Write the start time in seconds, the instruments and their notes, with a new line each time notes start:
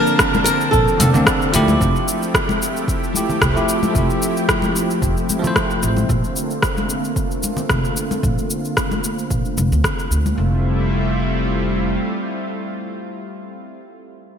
Already playing: tine electric piano D3 A#3 C4 A5, analog synth pad F3 A#3 C4 D4 A5, nylon-string guitar A#4
0.07 shaker
0.19 kick, cross-stick, shaker
0.34 high conga, shaker
0.44 nylon-string guitar A#4, open hi-hat, shaker
0.61 shaker
0.71 upright bass A#1, nylon-string guitar A4, kick, shaker
0.88 shaker
0.98 upright bass F1, tine electric piano D3 A#3 C4, open hi-hat, high conga, shaker
1.02 tine electric piano A4
1.13 upright bass D2, tine electric piano D3 A#3 C4, low conga, shaker
1.17 tine electric piano A4
1.27 kick, cross-stick, shaker
1.42 shaker
1.52 upright bass D2, tine electric piano F3 A3 E4 G4, open hi-hat, shaker
1.68 high conga, shaker
1.80 upright bass F1, analog synth pad F3 A3 C4 E4 G4, kick, shaker
1.96 shaker
2.08 shaker
2.23 shaker
2.34 kick, cross-stick, shaker
2.49 high conga, shaker
2.62 shaker
2.77 shaker
2.88 kick, shaker
3.04 shaker
3.13 tine electric piano F3 A3 E4, high conga, shaker
3.17 tine electric piano G4
3.29 low conga, shaker
3.41 upright bass C2, kick, cross-stick, shaker
3.54 tine electric piano F3 A3 E4 G4, shaker
3.69 shaker
3.83 high conga, shaker
3.90 tine electric piano F3 A3
3.95 upright bass F1, tine electric piano E4 G4, kick, shaker
4.10 shaker
4.22 shaker
4.37 shaker
4.49 kick, cross-stick, shaker
4.62 high conga, shaker
4.76 shaker
4.90 shaker
5.02 upright bass F1, kick, shaker
5.17 shaker
5.29 high conga, shaker
5.39 tine electric piano F3 A3
5.44 tine electric piano E4 C5, low conga, shaker
5.56 kick, cross-stick, shaker
5.71 shaker
5.83 upright bass A1, shaker
5.97 high conga, shaker
6.08 upright bass A#1, analog synth pad D3 A3 A#3 F4, kick, shaker
6.24 shaker
6.36 shaker
6.50 shaker
6.62 kick, cross-stick, shaker
6.77 high conga, shaker
6.90 shaker
7.04 shaker
7.16 kick, shaker
7.31 shaker
7.43 high conga, shaker
7.57 low conga, shaker
7.69 upright bass F1, kick, cross-stick, shaker
7.84 shaker
7.97 shaker
8.11 high conga, shaker
8.23 upright bass A#1, kick, shaker
8.38 shaker
8.50 shaker
8.65 shaker
8.77 kick, cross-stick, shaker
8.91 high conga, shaker
9.04 shaker
9.19 shaker
9.30 upright bass A#1, kick, shaker
9.45 shaker
9.57 upright bass F1, high conga, shaker
9.72 upright bass D2, low conga, shaker
9.84 kick, cross-stick, shaker
9.99 shaker
10.11 upright bass D2, shaker
10.26 high conga, shaker
10.38 upright bass F1, analog synth pad G3 A3 C4 E4 F4